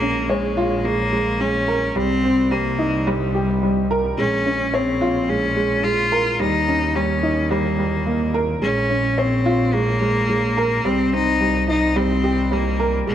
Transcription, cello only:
0.00 0.31 A#3 loud
0.29 0.86 G#3 medium
0.84 1.42 A#3 loud
1.40 1.98 C#4 loud
1.96 2.53 C4 loud
2.52 3.09 A#3 loud
3.07 3.90 G3 medium
4.18 4.76 C#4 loud
4.74 5.30 C4 loud
5.29 5.85 C#4 loud
5.84 6.41 F4 loud
6.40 6.97 D#4 loud
6.96 7.52 C#4 loud
7.51 8.35 A#3 medium
8.62 9.20 C#4 loud
9.18 9.75 C4 loud
9.74 10.87 A#3 loud
10.85 11.15 C4 loud
11.13 11.68 D#4 loud
11.69 11.98 D#4 loud
11.97 12.54 C4 loud
12.53 12.94 A#3 loud
13.08 13.15 A#3 loud

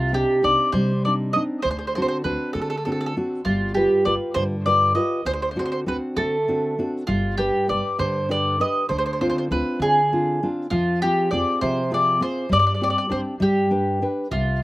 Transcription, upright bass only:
0.00 0.22 C2 medium
0.44 0.54 C2 medium
0.73 1.32 C3 medium
1.65 2.04 D2 medium
2.25 2.35 D2 medium
2.55 3.14 D3 medium
3.46 3.85 G1 medium
4.06 4.16 G1 medium
4.36 4.95 G2 medium
5.25 5.65 D2 medium
5.87 5.97 D2 soft
6.16 6.76 D3 medium
7.09 7.48 G1 medium
7.70 7.80 G1 medium
7.99 8.58 G2 medium
8.91 9.30 D2 medium
9.51 9.60 D2 medium
9.80 10.39 D3 medium
10.71 11.10 F2 medium
11.33 11.42 F2 medium
11.63 12.21 F3 medium
12.52 12.91 G2 medium
13.12 13.22 G2 medium
13.41 14.00 G2 medium
14.32 14.63 C2 medium

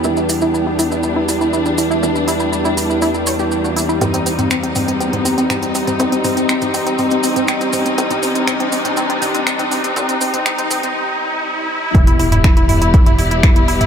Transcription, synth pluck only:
0.05 0.16 E4 loud
0.17 0.28 E4 medium
0.29 0.38 E4 medium
0.42 0.53 E4 loud
0.54 0.66 E4 medium
0.67 0.75 E4 medium
0.79 0.90 E4 loud
0.92 1.03 E4 medium
1.04 1.13 E4 medium
1.16 1.27 E4 medium
1.29 1.40 E4 medium
1.41 1.50 E4 medium
1.53 1.65 E4 medium
1.66 1.77 E4 medium
1.78 1.87 E4 medium
1.91 2.02 E4 loud
2.03 2.14 E4 medium
2.15 2.24 E4 medium
2.28 2.39 E4 loud
2.40 2.51 E4 medium
2.52 2.61 E4 medium
2.65 2.76 E4 loud
2.77 2.89 E4 medium
2.90 2.98 E4 medium
3.02 3.14 E4 loud
3.15 3.26 E4 medium
3.27 3.36 C#5 loud
3.40 3.45 G4 loud
3.52 3.60 G4 medium
3.64 3.73 F#4 medium
3.76 3.85 E4 loud
3.89 4.01 E4 loud
4.01 4.10 C4 medium
4.14 4.19 C4 medium
4.26 4.38 C4 medium
4.39 4.47 C4 medium
4.51 4.56 C4 medium
4.63 4.74 C4 medium
4.76 4.84 C4 medium
4.88 4.93 C4 medium
5.00 5.12 C4 medium
5.13 5.22 C4 medium
5.25 5.31 C4 medium
5.38 5.49 C4 medium
5.50 5.59 C4 medium
5.63 5.68 C4 medium
5.75 5.86 C4 medium
5.87 5.96 C4 medium
6.00 6.05 C4 medium
6.12 6.23 C4 medium
6.24 6.33 C4 medium
6.37 6.42 C4 medium
6.49 6.61 C4 medium
6.62 6.70 C4 medium
6.74 6.79 C4 medium
6.87 6.98 C4 medium
6.99 7.08 C4 medium
7.11 7.16 C4 medium
7.24 7.35 C4 medium
7.36 7.45 C4 medium
7.48 7.54 C4 medium
7.61 7.72 C4 medium
7.73 7.82 C4 medium
7.86 7.91 C4 medium
7.98 8.09 C4 medium
8.11 8.19 C4 medium
8.23 8.28 C4 medium
8.35 8.46 C4 medium
8.48 8.56 C4 medium
8.60 8.65 C4 medium
8.72 8.84 C4 medium
8.85 8.93 C4 medium
8.97 9.02 C4 medium
9.10 9.21 C4 medium
9.22 9.31 C4 medium
9.34 9.40 C4 medium
9.47 9.58 C4 medium
9.59 9.68 C4 medium
9.71 9.77 C4 medium
9.84 9.95 C4 medium
9.96 10.05 C4 medium
10.09 10.14 C4 medium
10.21 10.33 C4 medium
10.34 10.42 C4 medium
10.46 10.51 C4 medium
10.59 10.69 C4 medium
10.71 10.79 C4 medium
10.83 10.88 C4 medium
11.95 12.06 E4 medium
12.07 12.16 E4 medium
12.19 12.25 E4 medium
12.32 12.43 E4 medium
12.44 12.53 E4 medium
12.57 12.62 E4 medium
12.69 12.80 E4 medium
12.82 12.90 E4 medium
12.94 12.99 E4 medium
13.06 13.17 E4 medium
13.19 13.27 E4 medium
13.31 13.36 E4 medium
13.43 13.55 E4 medium
13.56 13.65 E4 medium
13.68 13.73 E4 medium
13.81 13.87 E4 medium

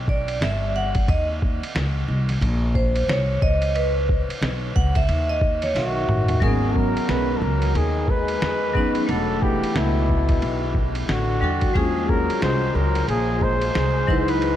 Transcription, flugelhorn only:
5.76 6.44 F#4 medium
6.43 6.73 G#4 medium
6.71 6.79 A4 medium
6.77 7.12 A#4 medium
7.10 7.39 B4 medium
7.38 7.45 A4 medium
7.43 7.78 A#4 medium
7.77 8.12 G#4 medium
8.10 9.04 B4 loud
9.04 9.12 B4 medium
9.10 9.44 A4 loud
9.43 9.78 G4 medium
9.77 10.84 E4 medium
11.09 11.77 F#4 medium
11.76 12.11 G#4 loud
12.09 12.42 A#4 loud
12.43 12.77 C5 loud
12.76 13.09 A#4 medium
13.09 13.44 G#4 loud
13.43 14.32 C5 loud
14.30 14.56 B4 medium

